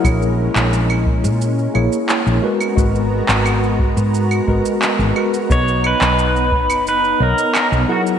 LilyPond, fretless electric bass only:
\new Staff \with { instrumentName = "Fretless electric bass" } { \clef bass \time 4/4 \key b \major \tempo 4 = 88 ais,,8 r16 ais,,4 ais,8 r16 ais,,16 r8 ais,,16 r8 | gis,,8 r16 gis,,4 gis,8 r16 gis,,16 r8 gis,,16 r8 | b,,8 r16 b,,4 fis,,8 r16 b,,16 r8 b,,16 r8 | }